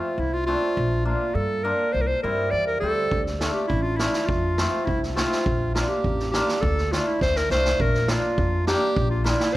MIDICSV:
0, 0, Header, 1, 5, 480
1, 0, Start_track
1, 0, Tempo, 585366
1, 635, Time_signature, 2, 2, 24, 8
1, 7847, End_track
2, 0, Start_track
2, 0, Title_t, "Clarinet"
2, 0, Program_c, 0, 71
2, 0, Note_on_c, 0, 65, 66
2, 156, Note_on_c, 0, 64, 73
2, 168, Note_off_c, 0, 65, 0
2, 272, Note_on_c, 0, 65, 79
2, 284, Note_off_c, 0, 64, 0
2, 374, Note_off_c, 0, 65, 0
2, 379, Note_on_c, 0, 65, 85
2, 835, Note_off_c, 0, 65, 0
2, 867, Note_on_c, 0, 65, 70
2, 1104, Note_on_c, 0, 69, 88
2, 1117, Note_off_c, 0, 65, 0
2, 1340, Note_on_c, 0, 70, 74
2, 1352, Note_off_c, 0, 69, 0
2, 1580, Note_on_c, 0, 72, 81
2, 1592, Note_off_c, 0, 70, 0
2, 1650, Note_on_c, 0, 70, 68
2, 1663, Note_off_c, 0, 72, 0
2, 1700, Note_on_c, 0, 72, 79
2, 1712, Note_off_c, 0, 70, 0
2, 1822, Note_off_c, 0, 72, 0
2, 1827, Note_on_c, 0, 70, 79
2, 2057, Note_on_c, 0, 74, 93
2, 2070, Note_off_c, 0, 70, 0
2, 2185, Note_off_c, 0, 74, 0
2, 2190, Note_on_c, 0, 70, 75
2, 2291, Note_off_c, 0, 70, 0
2, 2296, Note_on_c, 0, 69, 91
2, 2643, Note_off_c, 0, 69, 0
2, 2781, Note_on_c, 0, 69, 65
2, 2888, Note_off_c, 0, 69, 0
2, 2893, Note_on_c, 0, 67, 71
2, 3006, Note_off_c, 0, 67, 0
2, 3011, Note_on_c, 0, 64, 77
2, 3131, Note_on_c, 0, 65, 77
2, 3143, Note_off_c, 0, 64, 0
2, 3248, Note_on_c, 0, 64, 75
2, 3260, Note_off_c, 0, 65, 0
2, 3488, Note_on_c, 0, 65, 72
2, 3501, Note_off_c, 0, 64, 0
2, 3978, Note_on_c, 0, 64, 87
2, 3990, Note_off_c, 0, 65, 0
2, 4108, Note_off_c, 0, 64, 0
2, 4223, Note_on_c, 0, 65, 87
2, 4678, Note_off_c, 0, 65, 0
2, 4710, Note_on_c, 0, 65, 70
2, 4825, Note_on_c, 0, 67, 80
2, 4837, Note_off_c, 0, 65, 0
2, 5171, Note_off_c, 0, 67, 0
2, 5176, Note_on_c, 0, 67, 87
2, 5422, Note_on_c, 0, 69, 88
2, 5434, Note_off_c, 0, 67, 0
2, 5674, Note_on_c, 0, 65, 74
2, 5686, Note_off_c, 0, 69, 0
2, 5792, Note_on_c, 0, 64, 72
2, 5804, Note_off_c, 0, 65, 0
2, 5915, Note_off_c, 0, 64, 0
2, 5919, Note_on_c, 0, 72, 93
2, 6045, Note_on_c, 0, 70, 93
2, 6057, Note_off_c, 0, 72, 0
2, 6157, Note_off_c, 0, 70, 0
2, 6162, Note_on_c, 0, 72, 100
2, 6404, Note_on_c, 0, 70, 89
2, 6416, Note_off_c, 0, 72, 0
2, 6637, Note_on_c, 0, 65, 74
2, 6650, Note_off_c, 0, 70, 0
2, 7106, Note_off_c, 0, 65, 0
2, 7111, Note_on_c, 0, 67, 100
2, 7447, Note_off_c, 0, 67, 0
2, 7465, Note_on_c, 0, 65, 76
2, 7580, Note_on_c, 0, 64, 68
2, 7592, Note_off_c, 0, 65, 0
2, 7694, Note_off_c, 0, 64, 0
2, 7699, Note_on_c, 0, 64, 85
2, 7815, Note_on_c, 0, 72, 106
2, 7827, Note_off_c, 0, 64, 0
2, 7847, Note_off_c, 0, 72, 0
2, 7847, End_track
3, 0, Start_track
3, 0, Title_t, "Hammered dulcimer"
3, 0, Program_c, 1, 15
3, 388, Note_on_c, 1, 60, 59
3, 394, Note_on_c, 1, 57, 63
3, 395, Note_on_c, 1, 62, 58
3, 512, Note_off_c, 1, 60, 0
3, 515, Note_off_c, 1, 57, 0
3, 515, Note_off_c, 1, 62, 0
3, 861, Note_on_c, 1, 62, 50
3, 864, Note_on_c, 1, 65, 59
3, 866, Note_on_c, 1, 58, 55
3, 989, Note_off_c, 1, 62, 0
3, 990, Note_off_c, 1, 65, 0
3, 991, Note_off_c, 1, 58, 0
3, 1349, Note_on_c, 1, 58, 64
3, 1351, Note_on_c, 1, 62, 62
3, 1357, Note_on_c, 1, 65, 66
3, 1473, Note_off_c, 1, 58, 0
3, 1474, Note_off_c, 1, 62, 0
3, 1477, Note_off_c, 1, 65, 0
3, 1833, Note_on_c, 1, 55, 54
3, 1834, Note_on_c, 1, 60, 48
3, 1837, Note_on_c, 1, 64, 68
3, 1956, Note_off_c, 1, 60, 0
3, 1957, Note_off_c, 1, 64, 0
3, 2312, Note_off_c, 1, 55, 0
3, 2319, Note_on_c, 1, 55, 58
3, 2324, Note_on_c, 1, 60, 49
3, 2326, Note_on_c, 1, 67, 66
3, 2440, Note_off_c, 1, 67, 0
3, 2441, Note_off_c, 1, 60, 0
3, 2599, Note_off_c, 1, 55, 0
3, 2797, Note_on_c, 1, 57, 59
3, 2802, Note_on_c, 1, 65, 59
3, 2806, Note_on_c, 1, 62, 46
3, 2918, Note_off_c, 1, 57, 0
3, 2920, Note_off_c, 1, 65, 0
3, 2922, Note_off_c, 1, 62, 0
3, 3278, Note_on_c, 1, 57, 62
3, 3280, Note_on_c, 1, 62, 54
3, 3280, Note_on_c, 1, 65, 65
3, 3398, Note_off_c, 1, 65, 0
3, 3399, Note_off_c, 1, 57, 0
3, 3399, Note_off_c, 1, 62, 0
3, 3754, Note_on_c, 1, 60, 53
3, 3756, Note_on_c, 1, 57, 56
3, 3762, Note_on_c, 1, 65, 62
3, 3876, Note_off_c, 1, 60, 0
3, 3878, Note_off_c, 1, 57, 0
3, 3880, Note_off_c, 1, 65, 0
3, 4231, Note_on_c, 1, 57, 56
3, 4236, Note_on_c, 1, 60, 60
3, 4238, Note_on_c, 1, 65, 67
3, 4356, Note_off_c, 1, 57, 0
3, 4357, Note_off_c, 1, 60, 0
3, 4357, Note_off_c, 1, 65, 0
3, 4713, Note_on_c, 1, 58, 55
3, 4717, Note_on_c, 1, 62, 48
3, 4718, Note_on_c, 1, 65, 65
3, 4836, Note_off_c, 1, 58, 0
3, 4838, Note_off_c, 1, 62, 0
3, 4838, Note_off_c, 1, 65, 0
3, 5203, Note_on_c, 1, 62, 66
3, 5208, Note_on_c, 1, 58, 73
3, 5209, Note_on_c, 1, 65, 74
3, 5321, Note_off_c, 1, 62, 0
3, 5323, Note_off_c, 1, 58, 0
3, 5323, Note_off_c, 1, 65, 0
3, 5680, Note_on_c, 1, 57, 57
3, 5683, Note_on_c, 1, 62, 54
3, 5685, Note_on_c, 1, 65, 64
3, 5799, Note_off_c, 1, 57, 0
3, 5800, Note_off_c, 1, 62, 0
3, 5801, Note_off_c, 1, 65, 0
3, 6158, Note_on_c, 1, 57, 67
3, 6158, Note_on_c, 1, 62, 60
3, 6161, Note_on_c, 1, 65, 70
3, 6277, Note_off_c, 1, 62, 0
3, 6278, Note_off_c, 1, 57, 0
3, 6279, Note_off_c, 1, 65, 0
3, 6631, Note_on_c, 1, 58, 57
3, 6634, Note_on_c, 1, 65, 61
3, 6641, Note_on_c, 1, 62, 51
3, 6754, Note_off_c, 1, 58, 0
3, 6756, Note_off_c, 1, 65, 0
3, 6759, Note_off_c, 1, 62, 0
3, 7116, Note_on_c, 1, 67, 71
3, 7118, Note_on_c, 1, 62, 63
3, 7120, Note_on_c, 1, 58, 76
3, 7236, Note_off_c, 1, 67, 0
3, 7237, Note_off_c, 1, 62, 0
3, 7238, Note_off_c, 1, 58, 0
3, 7579, Note_on_c, 1, 58, 63
3, 7581, Note_on_c, 1, 62, 59
3, 7581, Note_on_c, 1, 65, 76
3, 7707, Note_off_c, 1, 65, 0
3, 7708, Note_off_c, 1, 58, 0
3, 7708, Note_off_c, 1, 62, 0
3, 7847, End_track
4, 0, Start_track
4, 0, Title_t, "Upright bass"
4, 0, Program_c, 2, 32
4, 145, Note_on_c, 2, 36, 76
4, 436, Note_off_c, 2, 36, 0
4, 632, Note_on_c, 2, 34, 85
4, 921, Note_off_c, 2, 34, 0
4, 1105, Note_on_c, 2, 43, 76
4, 1397, Note_off_c, 2, 43, 0
4, 1594, Note_on_c, 2, 36, 74
4, 1739, Note_off_c, 2, 36, 0
4, 1836, Note_on_c, 2, 43, 61
4, 2053, Note_off_c, 2, 43, 0
4, 2070, Note_on_c, 2, 40, 66
4, 2289, Note_off_c, 2, 40, 0
4, 2310, Note_on_c, 2, 38, 63
4, 2530, Note_off_c, 2, 38, 0
4, 2555, Note_on_c, 2, 38, 77
4, 2844, Note_off_c, 2, 38, 0
4, 3035, Note_on_c, 2, 33, 84
4, 3324, Note_off_c, 2, 33, 0
4, 3513, Note_on_c, 2, 41, 83
4, 3803, Note_off_c, 2, 41, 0
4, 3997, Note_on_c, 2, 36, 75
4, 4286, Note_off_c, 2, 36, 0
4, 4477, Note_on_c, 2, 34, 78
4, 4766, Note_off_c, 2, 34, 0
4, 4955, Note_on_c, 2, 33, 74
4, 5244, Note_off_c, 2, 33, 0
4, 5434, Note_on_c, 2, 38, 97
4, 5723, Note_off_c, 2, 38, 0
4, 5914, Note_on_c, 2, 38, 78
4, 6132, Note_off_c, 2, 38, 0
4, 6151, Note_on_c, 2, 36, 88
4, 6370, Note_off_c, 2, 36, 0
4, 6391, Note_on_c, 2, 34, 87
4, 6681, Note_off_c, 2, 34, 0
4, 6871, Note_on_c, 2, 41, 95
4, 7160, Note_off_c, 2, 41, 0
4, 7351, Note_on_c, 2, 34, 90
4, 7640, Note_off_c, 2, 34, 0
4, 7847, End_track
5, 0, Start_track
5, 0, Title_t, "Drums"
5, 2554, Note_on_c, 9, 36, 66
5, 2636, Note_off_c, 9, 36, 0
5, 2677, Note_on_c, 9, 38, 22
5, 2759, Note_off_c, 9, 38, 0
5, 2793, Note_on_c, 9, 38, 73
5, 2875, Note_off_c, 9, 38, 0
5, 3032, Note_on_c, 9, 36, 55
5, 3114, Note_off_c, 9, 36, 0
5, 3274, Note_on_c, 9, 38, 76
5, 3356, Note_off_c, 9, 38, 0
5, 3391, Note_on_c, 9, 38, 57
5, 3473, Note_off_c, 9, 38, 0
5, 3514, Note_on_c, 9, 36, 78
5, 3596, Note_off_c, 9, 36, 0
5, 3755, Note_on_c, 9, 38, 82
5, 3837, Note_off_c, 9, 38, 0
5, 3995, Note_on_c, 9, 36, 53
5, 4077, Note_off_c, 9, 36, 0
5, 4125, Note_on_c, 9, 38, 25
5, 4207, Note_off_c, 9, 38, 0
5, 4240, Note_on_c, 9, 38, 84
5, 4322, Note_off_c, 9, 38, 0
5, 4364, Note_on_c, 9, 38, 60
5, 4446, Note_off_c, 9, 38, 0
5, 4478, Note_on_c, 9, 36, 78
5, 4560, Note_off_c, 9, 36, 0
5, 4718, Note_on_c, 9, 38, 78
5, 4800, Note_off_c, 9, 38, 0
5, 4955, Note_on_c, 9, 36, 56
5, 5037, Note_off_c, 9, 36, 0
5, 5080, Note_on_c, 9, 38, 26
5, 5162, Note_off_c, 9, 38, 0
5, 5197, Note_on_c, 9, 38, 86
5, 5279, Note_off_c, 9, 38, 0
5, 5319, Note_on_c, 9, 38, 58
5, 5401, Note_off_c, 9, 38, 0
5, 5434, Note_on_c, 9, 36, 74
5, 5516, Note_off_c, 9, 36, 0
5, 5558, Note_on_c, 9, 38, 23
5, 5640, Note_off_c, 9, 38, 0
5, 5679, Note_on_c, 9, 38, 68
5, 5761, Note_off_c, 9, 38, 0
5, 5914, Note_on_c, 9, 36, 57
5, 5917, Note_on_c, 9, 38, 40
5, 5996, Note_off_c, 9, 36, 0
5, 5999, Note_off_c, 9, 38, 0
5, 6034, Note_on_c, 9, 38, 49
5, 6116, Note_off_c, 9, 38, 0
5, 6156, Note_on_c, 9, 38, 61
5, 6238, Note_off_c, 9, 38, 0
5, 6275, Note_on_c, 9, 38, 64
5, 6357, Note_off_c, 9, 38, 0
5, 6394, Note_on_c, 9, 36, 72
5, 6476, Note_off_c, 9, 36, 0
5, 6514, Note_on_c, 9, 38, 26
5, 6596, Note_off_c, 9, 38, 0
5, 6626, Note_on_c, 9, 38, 84
5, 6708, Note_off_c, 9, 38, 0
5, 6871, Note_on_c, 9, 36, 59
5, 6953, Note_off_c, 9, 36, 0
5, 7110, Note_on_c, 9, 38, 81
5, 7192, Note_off_c, 9, 38, 0
5, 7351, Note_on_c, 9, 36, 81
5, 7433, Note_off_c, 9, 36, 0
5, 7588, Note_on_c, 9, 38, 81
5, 7670, Note_off_c, 9, 38, 0
5, 7710, Note_on_c, 9, 38, 62
5, 7792, Note_off_c, 9, 38, 0
5, 7847, End_track
0, 0, End_of_file